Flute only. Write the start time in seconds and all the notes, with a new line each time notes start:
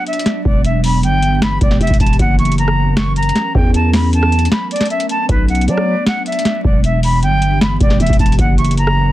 0.07 E5
0.45 D5
0.64 E5
0.84 B5
1.03 G5
1.42 B5
1.61 D5
1.81 E5
2.00 A5
2.19 F#5
2.38 C#6
2.58 A#5
2.96 C#6
3.16 A#5
3.55 G5
3.75 A5
3.93 B5
4.13 A5
4.51 B5
4.71 D5
4.90 E5
5.10 A5
5.29 B4
5.49 F#5
5.67 D5
6.06 F#5
6.26 E5
6.64 D5
6.84 E5
7.03 B5
7.22 G5
7.62 B5
7.81 D5
8.00 E5
8.19 A5
8.39 F#5
8.57 C#6
8.77 A#5